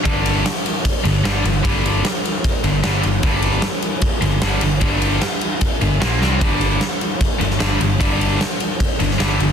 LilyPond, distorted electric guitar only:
\new Staff \with { instrumentName = "Distorted electric guitar" } { \clef bass \time 4/4 \key g \minor \tempo 4 = 151 <g, d g>4 r4. <g, d>8 <g, d g>8 <g, d>8 | <g, d g>4 r4. <g, d>8 <g, d g>8 <g, d>8 | <g, d g>4 r4. <g, d>8 <g, d g>8 <g, d>8 | <g, d g>4 r4. <g, d>8 <bes, f bes>8 <c g c'>8 |
<g, d g>4 r4. <g, d>8 <g, d g>8 <g, d>8 | <g, d g>4 r4. <g, d>8 <g, d g>8 <g, d>8 | }